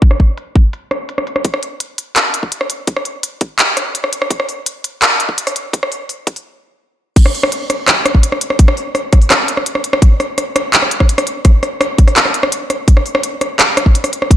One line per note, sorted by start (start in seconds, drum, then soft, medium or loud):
0.02 kick loud
0.02 closed hi-hat medium
0.11 cross-stick soft
0.20 kick medium
0.20 closed hi-hat soft
0.38 closed hi-hat medium
0.56 kick medium
0.56 closed hi-hat medium
0.73 closed hi-hat medium
0.91 cross-stick soft
0.91 closed hi-hat medium
1.09 closed hi-hat medium
1.18 cross-stick soft
1.27 closed hi-hat medium
1.36 cross-stick medium
1.45 kick loud
1.45 closed hi-hat medium
1.54 cross-stick soft
1.63 closed hi-hat soft
1.80 closed hi-hat medium
1.98 closed hi-hat medium
2.16 clap loud
2.16 closed hi-hat medium
2.34 closed hi-hat medium
2.43 kick medium
2.52 closed hi-hat medium
2.61 cross-stick soft
2.70 closed hi-hat medium
2.87 kick loud
2.87 closed hi-hat medium
2.96 cross-stick soft
3.05 closed hi-hat soft
3.23 closed hi-hat medium
3.41 kick loud
3.41 closed hi-hat medium
3.59 clap loud
3.59 closed hi-hat medium
3.77 cross-stick medium
3.77 closed hi-hat medium
3.95 closed hi-hat medium
4.04 cross-stick medium
4.13 closed hi-hat medium
4.22 cross-stick medium
4.30 kick loud
4.30 closed hi-hat medium
4.40 cross-stick soft
4.49 open hi-hat soft
4.66 closed hi-hat medium
4.84 closed hi-hat medium
5.02 clap loud
5.02 closed hi-hat medium
5.20 closed hi-hat medium
5.29 kick medium
5.38 closed hi-hat medium
5.47 cross-stick soft
5.47 open hi-hat medium
5.56 closed hi-hat medium
5.73 kick loud
5.73 closed hi-hat medium
5.83 cross-stick soft
5.92 open hi-hat soft
6.09 open hi-hat soft
6.27 kick loud
6.27 closed hi-hat medium
6.36 open hi-hat soft
7.16 kick loud
7.16 closed hi-hat medium
7.16 crash loud
7.26 cross-stick medium
7.35 open hi-hat soft
7.43 cross-stick medium
7.52 closed hi-hat medium
7.70 cross-stick medium
7.70 closed hi-hat medium
7.88 cross-stick medium
7.88 clap loud
7.88 closed hi-hat medium
8.06 cross-stick medium
8.06 closed hi-hat medium
8.15 kick medium
8.23 closed hi-hat medium
8.32 cross-stick medium
8.41 closed hi-hat medium
8.50 cross-stick medium
8.59 kick loud
8.59 closed hi-hat medium
8.68 cross-stick medium
8.77 open hi-hat soft
8.95 cross-stick medium
8.95 open hi-hat soft
9.13 kick loud
9.13 cross-stick medium
9.13 closed hi-hat medium
9.22 open hi-hat soft
9.30 cross-stick medium
9.30 clap loud
9.30 closed hi-hat medium
9.48 closed hi-hat medium
9.57 cross-stick medium
9.66 closed hi-hat medium
9.75 cross-stick medium
9.84 closed hi-hat medium
9.93 cross-stick medium
10.02 kick loud
10.02 closed hi-hat medium
10.20 cross-stick medium
10.20 open hi-hat soft
10.38 cross-stick medium
10.38 closed hi-hat medium
10.56 cross-stick medium
10.56 closed hi-hat medium
10.73 clap loud
10.73 closed hi-hat medium
10.82 cross-stick medium
10.91 closed hi-hat medium
11.00 kick medium
11.00 cross-stick medium
11.09 closed hi-hat medium
11.18 cross-stick medium
11.18 open hi-hat medium
11.27 closed hi-hat medium
11.45 kick loud
11.45 cross-stick soft
11.45 closed hi-hat medium
11.63 cross-stick soft
11.63 open hi-hat soft
11.81 cross-stick medium
11.81 open hi-hat soft
11.98 kick loud
11.98 closed hi-hat medium
12.08 cross-stick soft
12.08 open hi-hat soft
12.16 clap loud
12.16 closed hi-hat medium
12.25 cross-stick soft
12.34 closed hi-hat medium
12.43 cross-stick medium
12.52 closed hi-hat medium
12.70 cross-stick medium
12.70 closed hi-hat medium
12.88 kick loud
12.88 closed hi-hat medium
12.97 cross-stick medium
13.06 open hi-hat soft
13.15 cross-stick medium
13.23 closed hi-hat medium
13.41 cross-stick medium
13.41 closed hi-hat medium
13.59 cross-stick soft
13.59 clap loud
13.59 closed hi-hat medium
13.77 cross-stick medium
13.77 closed hi-hat medium
13.86 kick medium
13.95 closed hi-hat medium
14.04 cross-stick soft
14.04 open hi-hat medium
14.13 closed hi-hat medium
14.22 cross-stick medium
14.31 kick loud
14.31 closed hi-hat medium